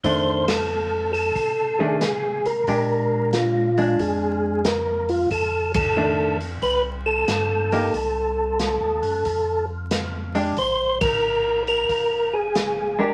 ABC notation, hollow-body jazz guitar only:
X:1
M:4/4
L:1/8
Q:"Swing" 1/4=91
K:Fmix
V:1 name="Hollow-body jazz guitar"
[E,A,D] z4 [E,A,D] z2 | [_A,DG]3 [A,D]3 z2 | z2 [E,A,D] z4 [B,EG] | z6 z [_A,DG] |
z6 z [_A,DG] |]